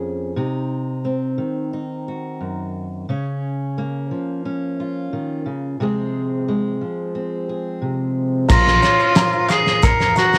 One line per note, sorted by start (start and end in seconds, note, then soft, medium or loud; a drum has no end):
0.00 0.37 F2 soft
0.00 0.33 F3 soft
0.00 0.34 A#3 soft
0.00 0.33 C#4 soft
0.00 0.34 G#4 soft
0.36 1.39 C3 medium
0.36 1.72 D#4 soft
1.05 3.04 C4 soft
1.38 3.08 D#3 soft
1.73 3.05 D#4 soft
2.08 3.05 F#4 soft
2.40 3.04 F#2 soft
3.09 4.10 C#3 medium
3.09 4.44 C#4 soft
3.78 5.76 A#3 soft
4.11 5.12 F3 soft
4.45 5.76 C#4 soft
4.80 5.83 F4 soft
5.13 5.46 D#3 soft
5.46 5.79 C#3 soft
5.80 6.81 C3 medium
5.80 6.80 F3 soft
5.80 6.47 G#3 soft
5.80 7.14 C4 soft
5.80 7.48 G#4 soft
6.48 8.50 G#3 soft
6.81 8.45 F3 soft
7.15 8.49 C4 soft
7.49 8.46 G#4 soft
7.82 8.45 C3 soft
8.49 8.78 A#1 loud
8.49 8.82 A#2 medium
8.49 8.82 F3 medium
8.49 8.83 A#3 medium
8.49 8.83 C#4 medium
8.49 9.52 F4 loud
8.49 8.83 F4 medium
8.49 9.15 A#4 medium
8.49 9.47 A#6 medium
8.49 kick loud
8.49 snare soft
8.49 crash loud
8.49 shaker medium
8.66 snare soft
8.66 shaker soft
8.82 9.15 F3 medium
8.82 9.16 A#3 medium
8.82 9.16 C#4 medium
8.82 10.16 C#5 medium
8.82 snare soft
8.82 shaker medium
8.99 shaker soft
9.15 9.66 A#2 medium
9.15 9.67 F3 medium
9.15 9.67 A#3 medium
9.15 9.67 C#4 medium
9.15 9.65 F4 medium
9.15 9.82 A#4 medium
9.15 snare loud
9.15 clap medium
9.15 shaker medium
9.32 shaker soft
9.49 9.85 G#4 loud
9.49 10.38 F5 medium
9.49 9.84 C7 medium
9.49 snare soft
9.49 clap medium
9.49 shaker medium
9.66 9.83 A#3 soft
9.66 9.84 C#4 medium
9.66 9.83 F4 medium
9.66 snare soft
9.66 shaker soft
9.82 10.11 F2 medium
9.82 10.00 A#3 medium
9.82 10.00 C#4 medium
9.82 10.38 A#4 medium
9.82 10.17 A#4 loud
9.82 10.17 C#7 medium
9.82 kick loud
9.82 snare soft
9.82 shaker loud
9.87 9.98 F4 medium
10.00 10.17 A#3 medium
10.00 10.17 C#4 medium
10.00 10.16 F4 medium
10.00 snare soft
10.00 shaker soft
10.16 10.38 A#3 medium
10.16 10.38 C#4 medium
10.16 10.38 F#4 loud
10.16 10.38 A#5 medium
10.16 10.38 A#6 medium
10.16 snare soft
10.16 shaker medium
10.33 snare soft
10.33 shaker soft